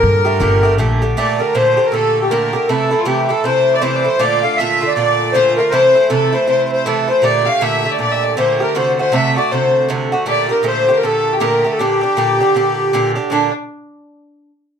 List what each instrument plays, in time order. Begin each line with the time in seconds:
Already playing: bouzouki A#2 D3 G4, accordion A#4, fiddle A#4
0.03 upright bass G2
0.25 bouzouki D3 A3 G4
0.40 upright bass G1, bouzouki A#2 D3 A3 G4
0.63 bouzouki D3 A3 G4
0.78 upright bass A#1, bouzouki A#2 D3 A3 G4
1.02 bouzouki D3 A3 G4
1.17 bouzouki A#2 D3 A3 G4, fiddle D5, accordion D5
1.39 bouzouki D3 A3 G4, fiddle A#4, accordion A#4
1.54 bouzouki A#2 D3 A3 G4, fiddle C5, accordion C5
1.77 bouzouki D3 A3 G4
1.86 fiddle A#4, accordion A#4
1.92 bouzouki A#2 D3 A3 G4, accordion A4, fiddle A4
2.22 accordion G4, fiddle G4
2.29 bouzouki A#2 D3 A3 G4, fiddle A#4, accordion A#4
2.53 bouzouki D3 A3 G4
2.68 bouzouki C3 E3 A3 E4, accordion A4, fiddle A4
2.91 bouzouki E3 A3 E4
2.98 fiddle F4, accordion F4
3.05 bouzouki C3 E3 A3 E4, fiddle G4, accordion G4
3.29 bouzouki E3 A3 E4, accordion A4, fiddle A4
3.44 bouzouki C3 E3 A3 E4, accordion C5, fiddle C5
3.73 accordion D5, fiddle D5
3.80 bouzouki C3 E3 A3 E4, accordion C5, fiddle C5
3.96 fiddle D5
4.04 bouzouki E3 A3 E4
4.09 fiddle C5
4.19 bouzouki A#2 D3 A3 F4, accordion D5, fiddle D5
4.42 bouzouki D3 A3 F4, accordion F5
4.56 bouzouki A#2 D3 A3, accordion E5, fiddle E5
4.61 bouzouki F4
4.81 bouzouki D3 A3 F4
4.87 accordion D5
4.94 bouzouki A#2 D3 A3 F4, accordion D5, fiddle D5
5.32 bouzouki A#2 D3 A3 F4, accordion C5, fiddle C5
5.56 bouzouki D3 A3 F4, accordion A#4, fiddle A#4
5.71 bouzouki C3 E3 A3 E4, accordion C5, fiddle C5
5.95 bouzouki E3 A3 E4
6.09 bouzouki C3 E3 A3 E4, accordion A4, fiddle A4
6.32 bouzouki E3 A3 E4, accordion C5, fiddle C5
6.47 bouzouki C3 E3 A3 E4, accordion C5, fiddle C5
6.63 accordion C5
6.72 accordion C5, fiddle C5
6.86 bouzouki C3 E3 A3 E4, accordion A4, fiddle A4
7.08 bouzouki E3 A3 E4, accordion C5, fiddle C5
7.22 bouzouki A#2 D3 A3 G4, accordion D5, fiddle D5
7.45 bouzouki D3 A3 G4, accordion F5, fiddle F5
7.61 bouzouki A#2 D3 A3 G4, fiddle E5, accordion E5
7.84 bouzouki D3 A3 G4
7.91 fiddle D5, accordion D5
7.99 bouzouki A#2 D3 A3 G4, fiddle D5, accordion D5
8.11 fiddle E5
8.24 fiddle D5
8.37 bouzouki A#2 D3 A3 G4, fiddle C5, accordion C5
8.60 bouzouki D3 A3 G4, fiddle A#4, accordion A#4
8.75 bouzouki C3 D3 A3 F#4, fiddle C5, accordion C5
8.99 bouzouki D3 A3 F#4, fiddle C5, accordion C5
9.12 bouzouki C3 D3 A3 F#4, fiddle E5
9.16 accordion E5
9.36 bouzouki D3 A3 F#4, fiddle D5, accordion D5
9.51 bouzouki C3 D3 A3 F#4, fiddle C5, accordion C5
9.89 bouzouki C3 D3 A3 F#4
10.12 bouzouki D3 A3 F#4
10.26 bouzouki A#2 D3 A3 G4, fiddle D5
10.30 accordion D5
10.49 bouzouki D3 A3 G4, fiddle A#4, accordion A#4
10.63 bouzouki A#2 D3 A3 G4, fiddle C5
10.67 accordion C5
10.88 bouzouki D3 A3 G4
10.95 fiddle A#4, accordion A#4
11.03 bouzouki A#2 D3 A3 G4, fiddle A4, accordion A4
11.32 fiddle G4, accordion G4
11.40 bouzouki A#2 D3 A3 G4, fiddle A#4, accordion A#4
11.64 bouzouki D3 A3 G4
11.71 fiddle A4, accordion A4
11.78 bouzouki A#2 D3 D4 G4, fiddle G4, accordion G4
12.01 bouzouki D3 D4 G4
12.17 bouzouki A#2 D3 D4 G4
12.40 bouzouki D3 D4 G4
12.55 bouzouki A#2 D3 D4 G4
12.93 bouzouki A#2 D3 D4 G4
13.15 bouzouki D3 D4 G4
13.30 bouzouki A#2 D3 D4 G4, fiddle D4, accordion D4